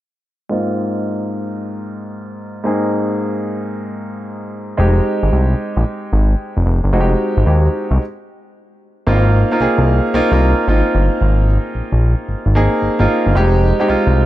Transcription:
0.49 G#2 A#3 C4 D#4 F4
2.64 G#2 A#3 C4 D#4 G#4
4.77 F1 G#3 C4 D#4 G4
5.23 G#1
5.32 C2
5.77 A#1
6.13 G#1
6.57 F1
6.66 F1
6.84 G1
6.93 F1 G#3 C4 D#4 F#4
7.00 G4
7.37 G#1
7.46 D#2 G#3 C4 D#4 G4
7.91 C2
9.07 G#1 A#3 C4 D#4 F4
9.51 A#3 C4 D#4 F4
9.60 C2 A#3 C4 D#4 G#4
9.78 C2
10.14 C2 A#3 C4 D#4 F4
10.32 C2 A#3 C4 D#4 F4
10.68 G#1 A#3 C4 D#4 F4
10.95 G1
11.21 G#1
11.75 A#1
11.92 A#1
12.29 G#1
12.46 G#1
12.55 A#3 C4 D#4 G#4
12.82 G#1
12.99 G#1 A#3 C4 D#4 F4
13.26 G1
13.35 F1 G#3 C4 D#4 G4
13.80 G#3 C4 D#4 G4
13.88 C2 G#3 C4 D#4 F4
14.07 C2

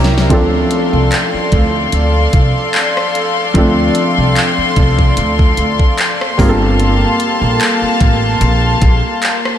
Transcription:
Already playing: C2 G3 A#3 C#4 E4 G4 A#4 C5 C#5 E5 A#5
0.04 snare
0.18 snare
0.29 D2 F3 A3 C4 D4 A4 D5 F5 C6, kick, closed hi-hat
0.34 A4
0.71 closed hi-hat
0.93 C2
1.12 clap, closed hi-hat
1.34 muted upright bass stroke
1.52 D2, kick, closed hi-hat
1.92 D2, closed hi-hat
2.33 C2, kick, closed hi-hat
2.74 clap, closed hi-hat
2.97 cross-stick
3.15 closed hi-hat
3.54 D2 F3 A3 C4 D4, kick, closed hi-hat
3.58 A4
3.95 closed hi-hat
4.18 C2
4.36 clap, closed hi-hat
4.58 muted upright bass stroke
4.76 C2, kick, closed hi-hat
4.99 kick
5.17 D2, closed hi-hat
5.39 kick
5.57 D2, closed hi-hat
5.80 kick
5.98 clap, closed hi-hat
6.21 cross-stick
6.38 G1 G3 A#3 C4 F4 F5 A5, kick, open hi-hat
6.43 G#4
6.49 A4
6.80 closed hi-hat
7.20 closed hi-hat
7.42 A#1
7.61 clap, closed hi-hat
7.82 muted upright bass stroke
8.00 A1, kick, closed hi-hat
8.41 A#1, closed hi-hat
8.82 A#1, kick, closed hi-hat
9.22 clap, closed hi-hat
9.45 cross-stick

